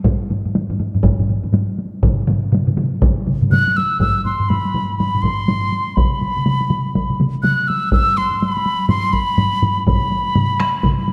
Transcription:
0.04 taiko, taiko low-mid, taiko high
0.21 taiko high
0.30 taiko low-mid, taiko high
0.45 taiko low-mid, taiko high
0.55 taiko low-mid, taiko high
0.70 taiko low-mid, taiko high
0.79 taiko low-mid, taiko high
0.95 taiko low-mid, taiko high
1.04 taiko, taiko low-mid, taiko high
1.19 taiko low-mid, taiko high
1.29 taiko low-mid
1.43 taiko low-mid, taiko high
1.54 taiko low-mid, taiko high
1.78 taiko high
1.94 taiko high
2.03 taiko, taiko low-mid, taiko mid, taiko high
2.20 taiko high
2.27 taiko low-mid, taiko mid, taiko high
2.45 taiko high
2.52 taiko low-mid, taiko mid, taiko high
2.67 taiko low-mid, taiko mid, taiko high
2.77 taiko low-mid, taiko mid, taiko high
2.93 taiko high
3.02 taiko, taiko low-mid, taiko mid, taiko high
3.18 taiko high
3.26 taiko low-mid, taiko mid, taiko high
3.41 taiko low-mid, taiko mid, taiko high
3.51 F#6, taiko low-mid, taiko mid, taiko high
3.68 taiko high
3.77 E6, taiko high
3.92 taiko high
4.00 E6, taiko, taiko low-mid, taiko high
4.17 taiko high
4.25 C6, taiko low-mid, taiko high
4.40 taiko low-mid, taiko high
4.49 B5, taiko low-mid, taiko high
4.65 taiko high
4.74 taiko low-mid, taiko high
4.90 taiko high
4.98 B5, taiko low-mid, taiko high
5.15 taiko low-mid, taiko high
5.22 C6, taiko, taiko low-mid, taiko high
5.39 taiko high
5.48 taiko low-mid, taiko high
5.63 taiko high
5.72 taiko high
5.88 taiko high
5.96 B5, taiko, taiko mid, taiko high
6.11 taiko high
6.21 taiko mid, taiko high
6.36 taiko mid, taiko high
6.46 taiko mid, taiko high
6.61 taiko high
6.70 taiko mid, taiko high
6.86 taiko high
6.94 taiko, taiko mid, taiko high
7.10 taiko mid, taiko high
7.20 taiko mid, taiko high
7.35 taiko high
7.43 F#6, taiko mid, taiko high
7.60 taiko high
7.68 E6, taiko high
7.92 E6, taiko, taiko low-mid, taiko high
8.08 taiko high
8.17 C6, taiko high
8.31 taiko low-mid, taiko high
8.40 B5, taiko high
8.57 taiko high
8.66 taiko high
8.80 taiko high
8.89 C6, taiko low-mid, taiko high
9.04 taiko high
9.13 B5, taiko, taiko high
9.29 taiko high
9.38 taiko low-mid, taiko high
9.53 taiko high
9.62 taiko low-mid, taiko high
9.77 taiko high
9.87 B5, taiko, taiko low-mid, taiko mid, taiko high
10.02 taiko high
10.11 taiko high
10.26 taiko high
10.35 taiko low-mid, taiko mid, taiko high
10.60 taiko rim, taiko high
10.75 taiko high
10.83 taiko, taiko low-mid, taiko mid, taiko high
10.98 taiko high
11.08 taiko high

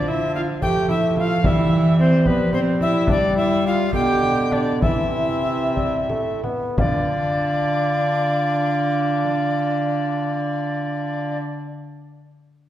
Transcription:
Already playing: D3 F3
0.08 E4 E5
0.35 F4 F5
0.62 F3 A3 G4 G5, frame drum
0.89 E4 E5, frame drum
1.17 F4 F5, frame drum
1.44 E3 G3 E4 E5, frame drum
1.99 C4 C5
2.25 F3 G3 B3 B4, frame drum
2.53 C4 C5, frame drum
2.81 E4 E5, frame drum
3.07 G3 D4 D5, frame drum
3.35 E4 E5
3.65 F4 F5
3.93 B2 D3 G4 G5, frame drum
4.22 frame drum
4.51 D4 D5, frame drum
4.82 C3 E3 E4 E5, frame drum
5.76 G3, frame drum
6.10 A3, frame drum
6.44 B3, frame drum
6.78 D3 D4 F4 D5, frame drum

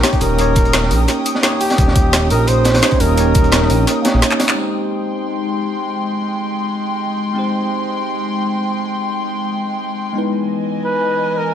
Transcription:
Already playing: A#3 C#4 D#4 G4 C#5 G5 D#6
0.02 A#3 C#4 D#4 G4 C#5, snare, closed hi-hat
0.13 kick, closed hi-hat
0.21 D#1 A#4, closed hi-hat, open hi-hat
0.36 A#3 C#4 D#4, closed hi-hat
0.40 G4 C#5
0.56 kick, closed hi-hat
0.65 closed hi-hat
0.73 snare, closed hi-hat
0.83 snare
0.91 A#1, closed hi-hat, open hi-hat
1.08 snare, closed hi-hat
1.26 closed hi-hat
1.35 snare
1.42 A#3 C#4 D#4 G4 C#5, snare, closed hi-hat
1.60 G4, closed hi-hat, open hi-hat
1.70 snare, closed hi-hat
1.75 D#1 A#3 C#4 D#4, kick, closed hi-hat
1.79 G4 D#5
1.88 snare
1.96 kick, closed hi-hat
2.13 snare, closed hi-hat
2.30 A#1 A#4, closed hi-hat, open hi-hat
2.47 A#1 C5, closed hi-hat
2.65 snare, closed hi-hat
2.74 snare, closed hi-hat
2.81 A#3 C#4 D#4 G4 C#5, snare, closed hi-hat
2.91 kick, closed hi-hat
3.00 D#1 A#4, closed hi-hat, open hi-hat
3.15 A#3 C#4 D#4, closed hi-hat
3.19 G4 C#5
3.35 kick, closed hi-hat
3.44 closed hi-hat
3.52 snare, closed hi-hat
3.62 snare
3.70 A#1, closed hi-hat, open hi-hat
3.87 snare, closed hi-hat
4.02 A#3 C#4 D#4, snare, closed hi-hat
4.06 G4 C#5
4.14 A#1
4.22 snare, closed hi-hat
4.31 clap
4.40 snare, closed hi-hat, open hi-hat
4.49 clap
4.54 G#3 C4 D#4 G4 G5 C6
4.60 C5
7.33 G#3 C4 D#4
7.38 G4 C5
10.13 E3 G#3 B3 D#4 D#5 G#5
10.17 E4 B4
10.85 B4
11.37 A#4

